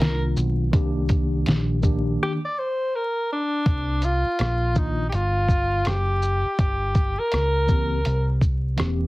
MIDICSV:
0, 0, Header, 1, 6, 480
1, 0, Start_track
1, 0, Key_signature, -3, "minor"
1, 0, Tempo, 731707
1, 482, Time_signature, 4, 2, 24, 8
1, 5950, End_track
2, 0, Start_track
2, 0, Title_t, "Alto saxophone"
2, 0, Program_c, 0, 65
2, 0, Note_on_c, 0, 70, 83
2, 156, Note_off_c, 0, 70, 0
2, 1459, Note_on_c, 0, 67, 103
2, 1523, Note_off_c, 0, 67, 0
2, 1605, Note_on_c, 0, 74, 99
2, 1698, Note_on_c, 0, 72, 94
2, 1708, Note_off_c, 0, 74, 0
2, 1935, Note_on_c, 0, 70, 85
2, 1945, Note_off_c, 0, 72, 0
2, 2168, Note_off_c, 0, 70, 0
2, 2179, Note_on_c, 0, 62, 99
2, 2654, Note_on_c, 0, 65, 83
2, 2664, Note_off_c, 0, 62, 0
2, 3136, Note_on_c, 0, 63, 80
2, 3146, Note_off_c, 0, 65, 0
2, 3334, Note_off_c, 0, 63, 0
2, 3339, Note_on_c, 0, 67, 64
2, 3375, Note_on_c, 0, 65, 98
2, 3385, Note_off_c, 0, 67, 0
2, 3850, Note_on_c, 0, 67, 94
2, 3860, Note_off_c, 0, 65, 0
2, 4326, Note_off_c, 0, 67, 0
2, 4331, Note_on_c, 0, 67, 88
2, 4716, Note_on_c, 0, 70, 101
2, 4726, Note_off_c, 0, 67, 0
2, 5434, Note_off_c, 0, 70, 0
2, 5950, End_track
3, 0, Start_track
3, 0, Title_t, "Tine electric piano"
3, 0, Program_c, 1, 4
3, 0, Note_on_c, 1, 51, 62
3, 0, Note_on_c, 1, 58, 57
3, 0, Note_on_c, 1, 62, 58
3, 0, Note_on_c, 1, 65, 71
3, 439, Note_off_c, 1, 51, 0
3, 442, Note_off_c, 1, 58, 0
3, 446, Note_off_c, 1, 62, 0
3, 450, Note_off_c, 1, 65, 0
3, 470, Note_on_c, 1, 51, 94
3, 480, Note_on_c, 1, 58, 89
3, 486, Note_on_c, 1, 62, 88
3, 493, Note_on_c, 1, 67, 110
3, 1160, Note_off_c, 1, 51, 0
3, 1164, Note_off_c, 1, 58, 0
3, 1167, Note_off_c, 1, 62, 0
3, 1171, Note_off_c, 1, 67, 0
3, 1190, Note_on_c, 1, 51, 81
3, 1197, Note_on_c, 1, 58, 79
3, 1205, Note_on_c, 1, 62, 83
3, 1211, Note_on_c, 1, 67, 91
3, 1555, Note_off_c, 1, 51, 0
3, 1559, Note_off_c, 1, 58, 0
3, 1563, Note_off_c, 1, 62, 0
3, 1566, Note_off_c, 1, 67, 0
3, 3109, Note_on_c, 1, 51, 67
3, 3115, Note_on_c, 1, 58, 59
3, 3124, Note_on_c, 1, 62, 64
3, 3129, Note_on_c, 1, 65, 70
3, 3301, Note_off_c, 1, 51, 0
3, 3304, Note_off_c, 1, 58, 0
3, 3309, Note_off_c, 1, 62, 0
3, 3311, Note_off_c, 1, 65, 0
3, 5032, Note_on_c, 1, 52, 67
3, 5038, Note_on_c, 1, 58, 62
3, 5045, Note_on_c, 1, 60, 57
3, 5053, Note_on_c, 1, 67, 71
3, 5222, Note_off_c, 1, 52, 0
3, 5225, Note_off_c, 1, 58, 0
3, 5229, Note_off_c, 1, 60, 0
3, 5233, Note_off_c, 1, 67, 0
3, 5751, Note_on_c, 1, 52, 73
3, 5758, Note_on_c, 1, 58, 67
3, 5765, Note_on_c, 1, 60, 65
3, 5773, Note_on_c, 1, 67, 85
3, 5950, Note_off_c, 1, 52, 0
3, 5950, Note_off_c, 1, 58, 0
3, 5950, Note_off_c, 1, 60, 0
3, 5950, Note_off_c, 1, 67, 0
3, 5950, End_track
4, 0, Start_track
4, 0, Title_t, "Picked electric bass"
4, 0, Program_c, 2, 34
4, 2, Note_on_c, 2, 36, 88
4, 230, Note_off_c, 2, 36, 0
4, 240, Note_on_c, 2, 35, 93
4, 469, Note_off_c, 2, 35, 0
4, 482, Note_on_c, 2, 36, 99
4, 938, Note_off_c, 2, 36, 0
4, 961, Note_on_c, 2, 34, 87
4, 1417, Note_off_c, 2, 34, 0
4, 2402, Note_on_c, 2, 36, 96
4, 2772, Note_off_c, 2, 36, 0
4, 2882, Note_on_c, 2, 34, 82
4, 3338, Note_off_c, 2, 34, 0
4, 3365, Note_on_c, 2, 31, 83
4, 3819, Note_off_c, 2, 31, 0
4, 3845, Note_on_c, 2, 30, 85
4, 4213, Note_off_c, 2, 30, 0
4, 4323, Note_on_c, 2, 31, 104
4, 4692, Note_off_c, 2, 31, 0
4, 4809, Note_on_c, 2, 37, 76
4, 5261, Note_off_c, 2, 37, 0
4, 5287, Note_on_c, 2, 36, 95
4, 5740, Note_off_c, 2, 36, 0
4, 5767, Note_on_c, 2, 28, 83
4, 5950, Note_off_c, 2, 28, 0
4, 5950, End_track
5, 0, Start_track
5, 0, Title_t, "Muted picked electric bass strokes"
5, 2795, Note_on_c, 9, 29, 38
5, 2861, Note_off_c, 9, 29, 0
5, 4238, Note_on_c, 9, 29, 45
5, 4303, Note_off_c, 9, 29, 0
5, 4716, Note_on_c, 9, 29, 41
5, 4782, Note_off_c, 9, 29, 0
5, 5950, End_track
6, 0, Start_track
6, 0, Title_t, "Drums"
6, 0, Note_on_c, 9, 42, 80
6, 10, Note_on_c, 9, 38, 125
6, 63, Note_off_c, 9, 42, 0
6, 76, Note_off_c, 9, 38, 0
6, 242, Note_on_c, 9, 82, 57
6, 308, Note_off_c, 9, 82, 0
6, 480, Note_on_c, 9, 36, 120
6, 480, Note_on_c, 9, 42, 76
6, 546, Note_off_c, 9, 36, 0
6, 546, Note_off_c, 9, 42, 0
6, 715, Note_on_c, 9, 42, 46
6, 715, Note_on_c, 9, 82, 46
6, 719, Note_on_c, 9, 36, 88
6, 781, Note_off_c, 9, 42, 0
6, 781, Note_off_c, 9, 82, 0
6, 785, Note_off_c, 9, 36, 0
6, 959, Note_on_c, 9, 42, 81
6, 974, Note_on_c, 9, 38, 118
6, 1024, Note_off_c, 9, 42, 0
6, 1039, Note_off_c, 9, 38, 0
6, 1201, Note_on_c, 9, 82, 50
6, 1203, Note_on_c, 9, 36, 80
6, 1266, Note_off_c, 9, 82, 0
6, 1268, Note_off_c, 9, 36, 0
6, 2400, Note_on_c, 9, 42, 69
6, 2401, Note_on_c, 9, 36, 108
6, 2466, Note_off_c, 9, 36, 0
6, 2466, Note_off_c, 9, 42, 0
6, 2637, Note_on_c, 9, 42, 40
6, 2637, Note_on_c, 9, 82, 39
6, 2702, Note_off_c, 9, 42, 0
6, 2702, Note_off_c, 9, 82, 0
6, 2879, Note_on_c, 9, 42, 75
6, 2894, Note_on_c, 9, 37, 111
6, 2945, Note_off_c, 9, 42, 0
6, 2960, Note_off_c, 9, 37, 0
6, 3120, Note_on_c, 9, 82, 50
6, 3122, Note_on_c, 9, 36, 77
6, 3186, Note_off_c, 9, 82, 0
6, 3188, Note_off_c, 9, 36, 0
6, 3361, Note_on_c, 9, 42, 75
6, 3427, Note_off_c, 9, 42, 0
6, 3598, Note_on_c, 9, 36, 79
6, 3604, Note_on_c, 9, 82, 52
6, 3664, Note_off_c, 9, 36, 0
6, 3669, Note_off_c, 9, 82, 0
6, 3837, Note_on_c, 9, 42, 76
6, 3851, Note_on_c, 9, 37, 109
6, 3903, Note_off_c, 9, 42, 0
6, 3916, Note_off_c, 9, 37, 0
6, 4083, Note_on_c, 9, 82, 51
6, 4149, Note_off_c, 9, 82, 0
6, 4321, Note_on_c, 9, 36, 102
6, 4321, Note_on_c, 9, 42, 74
6, 4386, Note_off_c, 9, 36, 0
6, 4386, Note_off_c, 9, 42, 0
6, 4558, Note_on_c, 9, 42, 42
6, 4558, Note_on_c, 9, 82, 43
6, 4560, Note_on_c, 9, 36, 80
6, 4624, Note_off_c, 9, 42, 0
6, 4624, Note_off_c, 9, 82, 0
6, 4626, Note_off_c, 9, 36, 0
6, 4800, Note_on_c, 9, 42, 76
6, 4814, Note_on_c, 9, 37, 112
6, 4865, Note_off_c, 9, 42, 0
6, 4880, Note_off_c, 9, 37, 0
6, 5041, Note_on_c, 9, 82, 43
6, 5043, Note_on_c, 9, 36, 75
6, 5107, Note_off_c, 9, 82, 0
6, 5109, Note_off_c, 9, 36, 0
6, 5281, Note_on_c, 9, 42, 81
6, 5347, Note_off_c, 9, 42, 0
6, 5519, Note_on_c, 9, 36, 76
6, 5524, Note_on_c, 9, 82, 50
6, 5585, Note_off_c, 9, 36, 0
6, 5590, Note_off_c, 9, 82, 0
6, 5757, Note_on_c, 9, 42, 70
6, 5770, Note_on_c, 9, 37, 111
6, 5822, Note_off_c, 9, 42, 0
6, 5836, Note_off_c, 9, 37, 0
6, 5950, End_track
0, 0, End_of_file